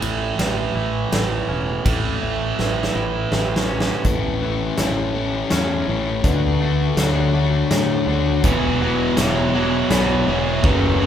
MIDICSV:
0, 0, Header, 1, 7, 480
1, 0, Start_track
1, 0, Key_signature, 3, "major"
1, 0, Tempo, 732601
1, 1217, Time_signature, 3, 2, 24, 8
1, 7248, End_track
2, 0, Start_track
2, 0, Title_t, "Vibraphone"
2, 0, Program_c, 0, 11
2, 0, Note_on_c, 0, 69, 74
2, 256, Note_off_c, 0, 69, 0
2, 258, Note_on_c, 0, 71, 70
2, 731, Note_off_c, 0, 71, 0
2, 739, Note_on_c, 0, 71, 65
2, 1218, Note_off_c, 0, 71, 0
2, 1219, Note_on_c, 0, 69, 74
2, 1698, Note_off_c, 0, 69, 0
2, 1703, Note_on_c, 0, 71, 73
2, 2170, Note_off_c, 0, 71, 0
2, 2178, Note_on_c, 0, 71, 71
2, 2646, Note_off_c, 0, 71, 0
2, 2653, Note_on_c, 0, 71, 68
2, 3134, Note_on_c, 0, 73, 66
2, 3136, Note_off_c, 0, 71, 0
2, 3608, Note_off_c, 0, 73, 0
2, 3616, Note_on_c, 0, 73, 64
2, 4092, Note_on_c, 0, 71, 74
2, 4097, Note_off_c, 0, 73, 0
2, 4573, Note_on_c, 0, 73, 70
2, 4575, Note_off_c, 0, 71, 0
2, 5043, Note_off_c, 0, 73, 0
2, 5051, Note_on_c, 0, 73, 68
2, 5532, Note_on_c, 0, 71, 80
2, 5533, Note_off_c, 0, 73, 0
2, 6013, Note_off_c, 0, 71, 0
2, 6014, Note_on_c, 0, 73, 76
2, 6488, Note_off_c, 0, 73, 0
2, 6496, Note_on_c, 0, 73, 79
2, 6972, Note_on_c, 0, 71, 94
2, 6974, Note_off_c, 0, 73, 0
2, 7248, Note_off_c, 0, 71, 0
2, 7248, End_track
3, 0, Start_track
3, 0, Title_t, "Clean electric guitar"
3, 0, Program_c, 1, 27
3, 0, Note_on_c, 1, 45, 64
3, 0, Note_on_c, 1, 64, 61
3, 12, Note_on_c, 1, 52, 54
3, 490, Note_off_c, 1, 64, 0
3, 492, Note_on_c, 1, 64, 63
3, 974, Note_on_c, 1, 61, 56
3, 1208, Note_off_c, 1, 45, 0
3, 1210, Note_on_c, 1, 45, 66
3, 1451, Note_off_c, 1, 52, 0
3, 1454, Note_on_c, 1, 52, 57
3, 1695, Note_off_c, 1, 64, 0
3, 1937, Note_on_c, 1, 64, 65
3, 2176, Note_off_c, 1, 61, 0
3, 2414, Note_off_c, 1, 45, 0
3, 2416, Note_on_c, 1, 61, 61
3, 2656, Note_off_c, 1, 52, 0
3, 2657, Note_off_c, 1, 61, 0
3, 2657, Note_off_c, 1, 64, 0
3, 7248, End_track
4, 0, Start_track
4, 0, Title_t, "Distorted electric guitar"
4, 0, Program_c, 2, 30
4, 2653, Note_on_c, 2, 45, 75
4, 2655, Note_on_c, 2, 52, 72
4, 2656, Note_on_c, 2, 57, 82
4, 2660, Note_on_c, 2, 61, 82
4, 2663, Note_on_c, 2, 64, 82
4, 2882, Note_off_c, 2, 45, 0
4, 2886, Note_off_c, 2, 52, 0
4, 2890, Note_on_c, 2, 45, 64
4, 2892, Note_off_c, 2, 57, 0
4, 2893, Note_off_c, 2, 64, 0
4, 2894, Note_on_c, 2, 52, 63
4, 2895, Note_off_c, 2, 61, 0
4, 2895, Note_on_c, 2, 57, 70
4, 2898, Note_on_c, 2, 61, 70
4, 2901, Note_on_c, 2, 64, 72
4, 3123, Note_off_c, 2, 45, 0
4, 3124, Note_off_c, 2, 52, 0
4, 3131, Note_on_c, 2, 45, 76
4, 3132, Note_off_c, 2, 57, 0
4, 3132, Note_on_c, 2, 52, 78
4, 3133, Note_off_c, 2, 64, 0
4, 3135, Note_on_c, 2, 57, 82
4, 3136, Note_off_c, 2, 61, 0
4, 3139, Note_on_c, 2, 61, 82
4, 3141, Note_on_c, 2, 64, 88
4, 3361, Note_off_c, 2, 45, 0
4, 3364, Note_off_c, 2, 52, 0
4, 3366, Note_off_c, 2, 57, 0
4, 3367, Note_off_c, 2, 61, 0
4, 3369, Note_on_c, 2, 45, 68
4, 3370, Note_off_c, 2, 64, 0
4, 3372, Note_on_c, 2, 52, 75
4, 3374, Note_on_c, 2, 57, 76
4, 3374, Note_on_c, 2, 61, 77
4, 3377, Note_on_c, 2, 64, 74
4, 3600, Note_off_c, 2, 45, 0
4, 3603, Note_off_c, 2, 52, 0
4, 3606, Note_off_c, 2, 57, 0
4, 3608, Note_off_c, 2, 61, 0
4, 3608, Note_on_c, 2, 45, 66
4, 3610, Note_off_c, 2, 64, 0
4, 3611, Note_on_c, 2, 52, 69
4, 3614, Note_on_c, 2, 57, 79
4, 3616, Note_on_c, 2, 61, 83
4, 3617, Note_on_c, 2, 64, 80
4, 3838, Note_off_c, 2, 45, 0
4, 3844, Note_off_c, 2, 52, 0
4, 3844, Note_off_c, 2, 57, 0
4, 3846, Note_off_c, 2, 61, 0
4, 3846, Note_on_c, 2, 45, 85
4, 3848, Note_off_c, 2, 64, 0
4, 3852, Note_on_c, 2, 52, 75
4, 3852, Note_on_c, 2, 57, 88
4, 3854, Note_on_c, 2, 61, 85
4, 3856, Note_on_c, 2, 64, 85
4, 4077, Note_off_c, 2, 45, 0
4, 4080, Note_off_c, 2, 52, 0
4, 4080, Note_off_c, 2, 57, 0
4, 4081, Note_off_c, 2, 61, 0
4, 4082, Note_off_c, 2, 64, 0
4, 4084, Note_on_c, 2, 50, 83
4, 4089, Note_on_c, 2, 57, 83
4, 4089, Note_on_c, 2, 62, 90
4, 4093, Note_on_c, 2, 66, 81
4, 4321, Note_off_c, 2, 50, 0
4, 4323, Note_off_c, 2, 57, 0
4, 4324, Note_off_c, 2, 62, 0
4, 4329, Note_on_c, 2, 50, 75
4, 4331, Note_on_c, 2, 57, 78
4, 4332, Note_on_c, 2, 62, 83
4, 4334, Note_off_c, 2, 66, 0
4, 4336, Note_on_c, 2, 66, 85
4, 4564, Note_off_c, 2, 50, 0
4, 4567, Note_off_c, 2, 57, 0
4, 4569, Note_off_c, 2, 62, 0
4, 4571, Note_on_c, 2, 50, 82
4, 4575, Note_on_c, 2, 57, 96
4, 4576, Note_off_c, 2, 66, 0
4, 4577, Note_on_c, 2, 62, 95
4, 4578, Note_on_c, 2, 66, 96
4, 4800, Note_off_c, 2, 50, 0
4, 4801, Note_off_c, 2, 57, 0
4, 4806, Note_off_c, 2, 62, 0
4, 4808, Note_on_c, 2, 50, 76
4, 4809, Note_on_c, 2, 57, 79
4, 4813, Note_off_c, 2, 66, 0
4, 4814, Note_on_c, 2, 62, 85
4, 4815, Note_on_c, 2, 66, 92
4, 5044, Note_off_c, 2, 50, 0
4, 5046, Note_off_c, 2, 57, 0
4, 5049, Note_off_c, 2, 62, 0
4, 5052, Note_on_c, 2, 50, 84
4, 5054, Note_on_c, 2, 57, 82
4, 5057, Note_off_c, 2, 66, 0
4, 5057, Note_on_c, 2, 62, 87
4, 5060, Note_on_c, 2, 66, 82
4, 5281, Note_off_c, 2, 50, 0
4, 5285, Note_off_c, 2, 57, 0
4, 5287, Note_off_c, 2, 62, 0
4, 5289, Note_on_c, 2, 50, 95
4, 5293, Note_on_c, 2, 57, 89
4, 5295, Note_off_c, 2, 66, 0
4, 5295, Note_on_c, 2, 62, 89
4, 5297, Note_on_c, 2, 66, 101
4, 5518, Note_off_c, 2, 50, 0
4, 5520, Note_off_c, 2, 57, 0
4, 5521, Note_off_c, 2, 62, 0
4, 5531, Note_on_c, 2, 52, 86
4, 5533, Note_on_c, 2, 54, 90
4, 5536, Note_off_c, 2, 66, 0
4, 5537, Note_on_c, 2, 59, 95
4, 5538, Note_on_c, 2, 64, 102
4, 5764, Note_off_c, 2, 52, 0
4, 5772, Note_off_c, 2, 59, 0
4, 5772, Note_off_c, 2, 64, 0
4, 5772, Note_on_c, 2, 52, 74
4, 5774, Note_off_c, 2, 54, 0
4, 5777, Note_on_c, 2, 54, 86
4, 5780, Note_on_c, 2, 59, 91
4, 5780, Note_on_c, 2, 64, 88
4, 6003, Note_off_c, 2, 52, 0
4, 6009, Note_off_c, 2, 54, 0
4, 6009, Note_off_c, 2, 59, 0
4, 6009, Note_off_c, 2, 64, 0
4, 6011, Note_on_c, 2, 52, 101
4, 6011, Note_on_c, 2, 54, 103
4, 6017, Note_on_c, 2, 59, 104
4, 6017, Note_on_c, 2, 64, 102
4, 6244, Note_off_c, 2, 52, 0
4, 6250, Note_off_c, 2, 54, 0
4, 6251, Note_off_c, 2, 59, 0
4, 6251, Note_off_c, 2, 64, 0
4, 6251, Note_on_c, 2, 52, 89
4, 6253, Note_on_c, 2, 54, 87
4, 6258, Note_on_c, 2, 59, 92
4, 6259, Note_on_c, 2, 64, 93
4, 6484, Note_off_c, 2, 52, 0
4, 6492, Note_off_c, 2, 59, 0
4, 6492, Note_off_c, 2, 64, 0
4, 6492, Note_on_c, 2, 52, 81
4, 6493, Note_off_c, 2, 54, 0
4, 6496, Note_on_c, 2, 54, 84
4, 6500, Note_on_c, 2, 59, 84
4, 6500, Note_on_c, 2, 64, 92
4, 6725, Note_off_c, 2, 52, 0
4, 6733, Note_off_c, 2, 59, 0
4, 6733, Note_on_c, 2, 52, 94
4, 6734, Note_off_c, 2, 54, 0
4, 6736, Note_off_c, 2, 64, 0
4, 6737, Note_on_c, 2, 54, 101
4, 6741, Note_on_c, 2, 59, 97
4, 6744, Note_on_c, 2, 64, 114
4, 6959, Note_off_c, 2, 52, 0
4, 6962, Note_off_c, 2, 59, 0
4, 6964, Note_off_c, 2, 64, 0
4, 6974, Note_on_c, 2, 42, 91
4, 6976, Note_off_c, 2, 54, 0
4, 6977, Note_on_c, 2, 49, 99
4, 6979, Note_on_c, 2, 54, 93
4, 6981, Note_on_c, 2, 57, 95
4, 6982, Note_on_c, 2, 61, 102
4, 7202, Note_off_c, 2, 42, 0
4, 7206, Note_off_c, 2, 49, 0
4, 7207, Note_off_c, 2, 54, 0
4, 7210, Note_off_c, 2, 57, 0
4, 7210, Note_on_c, 2, 42, 80
4, 7213, Note_off_c, 2, 61, 0
4, 7214, Note_on_c, 2, 49, 87
4, 7214, Note_on_c, 2, 54, 87
4, 7218, Note_on_c, 2, 57, 86
4, 7221, Note_on_c, 2, 61, 101
4, 7248, Note_off_c, 2, 42, 0
4, 7248, Note_off_c, 2, 49, 0
4, 7248, Note_off_c, 2, 54, 0
4, 7248, Note_off_c, 2, 57, 0
4, 7248, Note_off_c, 2, 61, 0
4, 7248, End_track
5, 0, Start_track
5, 0, Title_t, "Distorted electric guitar"
5, 0, Program_c, 3, 30
5, 0, Note_on_c, 3, 45, 67
5, 0, Note_on_c, 3, 52, 75
5, 0, Note_on_c, 3, 57, 75
5, 1208, Note_off_c, 3, 45, 0
5, 1211, Note_on_c, 3, 45, 82
5, 1220, Note_off_c, 3, 52, 0
5, 1223, Note_on_c, 3, 52, 75
5, 1229, Note_off_c, 3, 57, 0
5, 1232, Note_on_c, 3, 57, 86
5, 2640, Note_off_c, 3, 45, 0
5, 2646, Note_off_c, 3, 52, 0
5, 2651, Note_off_c, 3, 57, 0
5, 5531, Note_on_c, 3, 40, 83
5, 5535, Note_on_c, 3, 47, 85
5, 5539, Note_on_c, 3, 52, 101
5, 5765, Note_off_c, 3, 40, 0
5, 5767, Note_off_c, 3, 47, 0
5, 5769, Note_off_c, 3, 52, 0
5, 5773, Note_on_c, 3, 40, 73
5, 5775, Note_on_c, 3, 47, 79
5, 5777, Note_on_c, 3, 52, 83
5, 6002, Note_off_c, 3, 40, 0
5, 6004, Note_off_c, 3, 47, 0
5, 6009, Note_on_c, 3, 40, 83
5, 6010, Note_off_c, 3, 52, 0
5, 6012, Note_on_c, 3, 47, 93
5, 6018, Note_on_c, 3, 52, 95
5, 6239, Note_off_c, 3, 40, 0
5, 6244, Note_off_c, 3, 47, 0
5, 6247, Note_on_c, 3, 40, 77
5, 6248, Note_off_c, 3, 52, 0
5, 6252, Note_on_c, 3, 47, 86
5, 6256, Note_on_c, 3, 52, 86
5, 6484, Note_off_c, 3, 40, 0
5, 6489, Note_off_c, 3, 47, 0
5, 6492, Note_off_c, 3, 52, 0
5, 6492, Note_on_c, 3, 40, 82
5, 6497, Note_on_c, 3, 47, 77
5, 6500, Note_on_c, 3, 52, 89
5, 6721, Note_off_c, 3, 40, 0
5, 6725, Note_off_c, 3, 47, 0
5, 6729, Note_on_c, 3, 40, 95
5, 6730, Note_off_c, 3, 52, 0
5, 6733, Note_on_c, 3, 47, 101
5, 6738, Note_on_c, 3, 52, 102
5, 6957, Note_off_c, 3, 40, 0
5, 6958, Note_off_c, 3, 47, 0
5, 6961, Note_off_c, 3, 52, 0
5, 6969, Note_on_c, 3, 42, 92
5, 6971, Note_on_c, 3, 49, 91
5, 6974, Note_on_c, 3, 54, 105
5, 7201, Note_off_c, 3, 42, 0
5, 7203, Note_off_c, 3, 49, 0
5, 7207, Note_off_c, 3, 54, 0
5, 7209, Note_on_c, 3, 42, 72
5, 7211, Note_on_c, 3, 49, 77
5, 7214, Note_on_c, 3, 54, 87
5, 7248, Note_off_c, 3, 42, 0
5, 7248, Note_off_c, 3, 49, 0
5, 7248, Note_off_c, 3, 54, 0
5, 7248, End_track
6, 0, Start_track
6, 0, Title_t, "Fingered electric bass"
6, 0, Program_c, 4, 33
6, 15, Note_on_c, 4, 33, 75
6, 205, Note_off_c, 4, 33, 0
6, 254, Note_on_c, 4, 33, 72
6, 445, Note_off_c, 4, 33, 0
6, 493, Note_on_c, 4, 33, 76
6, 684, Note_off_c, 4, 33, 0
6, 736, Note_on_c, 4, 33, 79
6, 926, Note_off_c, 4, 33, 0
6, 977, Note_on_c, 4, 28, 73
6, 1167, Note_off_c, 4, 28, 0
6, 1215, Note_on_c, 4, 33, 77
6, 1406, Note_off_c, 4, 33, 0
6, 1460, Note_on_c, 4, 33, 75
6, 1649, Note_off_c, 4, 33, 0
6, 1698, Note_on_c, 4, 33, 79
6, 1887, Note_off_c, 4, 33, 0
6, 1935, Note_on_c, 4, 33, 78
6, 2126, Note_off_c, 4, 33, 0
6, 2174, Note_on_c, 4, 33, 81
6, 2555, Note_off_c, 4, 33, 0
6, 2651, Note_on_c, 4, 33, 69
6, 3077, Note_off_c, 4, 33, 0
6, 3132, Note_on_c, 4, 33, 71
6, 3558, Note_off_c, 4, 33, 0
6, 3614, Note_on_c, 4, 40, 77
6, 3827, Note_off_c, 4, 40, 0
6, 3852, Note_on_c, 4, 33, 73
6, 4066, Note_off_c, 4, 33, 0
6, 4088, Note_on_c, 4, 38, 75
6, 4515, Note_off_c, 4, 38, 0
6, 4566, Note_on_c, 4, 38, 77
6, 4994, Note_off_c, 4, 38, 0
6, 5049, Note_on_c, 4, 45, 81
6, 5264, Note_off_c, 4, 45, 0
6, 5285, Note_on_c, 4, 38, 82
6, 5501, Note_off_c, 4, 38, 0
6, 5530, Note_on_c, 4, 28, 83
6, 5956, Note_off_c, 4, 28, 0
6, 6009, Note_on_c, 4, 28, 84
6, 6434, Note_off_c, 4, 28, 0
6, 6488, Note_on_c, 4, 35, 94
6, 6702, Note_off_c, 4, 35, 0
6, 6728, Note_on_c, 4, 28, 85
6, 6942, Note_off_c, 4, 28, 0
6, 6971, Note_on_c, 4, 30, 92
6, 7248, Note_off_c, 4, 30, 0
6, 7248, End_track
7, 0, Start_track
7, 0, Title_t, "Drums"
7, 14, Note_on_c, 9, 51, 55
7, 79, Note_off_c, 9, 51, 0
7, 256, Note_on_c, 9, 38, 66
7, 256, Note_on_c, 9, 51, 52
7, 322, Note_off_c, 9, 38, 0
7, 322, Note_off_c, 9, 51, 0
7, 737, Note_on_c, 9, 38, 77
7, 737, Note_on_c, 9, 51, 58
7, 802, Note_off_c, 9, 38, 0
7, 802, Note_off_c, 9, 51, 0
7, 1215, Note_on_c, 9, 51, 64
7, 1216, Note_on_c, 9, 36, 99
7, 1281, Note_off_c, 9, 51, 0
7, 1282, Note_off_c, 9, 36, 0
7, 1696, Note_on_c, 9, 38, 49
7, 1762, Note_off_c, 9, 38, 0
7, 1856, Note_on_c, 9, 38, 50
7, 1921, Note_off_c, 9, 38, 0
7, 2174, Note_on_c, 9, 38, 63
7, 2240, Note_off_c, 9, 38, 0
7, 2334, Note_on_c, 9, 38, 76
7, 2399, Note_off_c, 9, 38, 0
7, 2493, Note_on_c, 9, 38, 75
7, 2558, Note_off_c, 9, 38, 0
7, 2650, Note_on_c, 9, 42, 58
7, 2653, Note_on_c, 9, 36, 86
7, 2715, Note_off_c, 9, 42, 0
7, 2718, Note_off_c, 9, 36, 0
7, 3129, Note_on_c, 9, 38, 68
7, 3129, Note_on_c, 9, 42, 54
7, 3194, Note_off_c, 9, 38, 0
7, 3194, Note_off_c, 9, 42, 0
7, 3607, Note_on_c, 9, 38, 76
7, 3607, Note_on_c, 9, 42, 59
7, 3672, Note_off_c, 9, 38, 0
7, 3672, Note_off_c, 9, 42, 0
7, 4087, Note_on_c, 9, 42, 60
7, 4089, Note_on_c, 9, 36, 96
7, 4153, Note_off_c, 9, 42, 0
7, 4154, Note_off_c, 9, 36, 0
7, 4568, Note_on_c, 9, 38, 73
7, 4568, Note_on_c, 9, 42, 64
7, 4634, Note_off_c, 9, 38, 0
7, 4634, Note_off_c, 9, 42, 0
7, 5050, Note_on_c, 9, 38, 81
7, 5050, Note_on_c, 9, 42, 73
7, 5116, Note_off_c, 9, 38, 0
7, 5116, Note_off_c, 9, 42, 0
7, 5527, Note_on_c, 9, 42, 70
7, 5529, Note_on_c, 9, 36, 109
7, 5592, Note_off_c, 9, 42, 0
7, 5595, Note_off_c, 9, 36, 0
7, 6009, Note_on_c, 9, 38, 78
7, 6009, Note_on_c, 9, 42, 69
7, 6074, Note_off_c, 9, 38, 0
7, 6074, Note_off_c, 9, 42, 0
7, 6490, Note_on_c, 9, 38, 84
7, 6490, Note_on_c, 9, 42, 73
7, 6555, Note_off_c, 9, 38, 0
7, 6555, Note_off_c, 9, 42, 0
7, 6970, Note_on_c, 9, 36, 117
7, 7036, Note_off_c, 9, 36, 0
7, 7248, End_track
0, 0, End_of_file